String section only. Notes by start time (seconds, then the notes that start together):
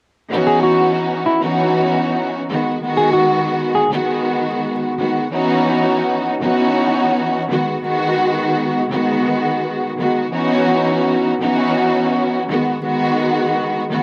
0.31 E3 B3 C#4 D#4 F#4
1.41 E3 B3 C#4 D#4 F#4
2.50 D#3 G#3 B3 F#4
2.81 D#3 G#3 B3 F#4
3.90 D#3 G#3 B3 F#4
4.98 D#3 G#3 B3 F#4
5.31 E3 B3 C#4 D#4 F#4
6.40 E3 B3 C#4 D#4 F#4
7.49 D#3 G#3 B3 F#4
7.81 D#3 G#3 B3 F#4
8.90 D#3 G#3 B3 F#4
9.98 D#3 G#3 B3 F#4
10.31 E3 B3 C#4 D#4 F#4
11.41 E3 B3 C#4 D#4 F#4
12.49 D#3 G#3 B3 F#4
12.81 D#3 G#3 B3 F#4
13.90 D#3 G#3 B3 F#4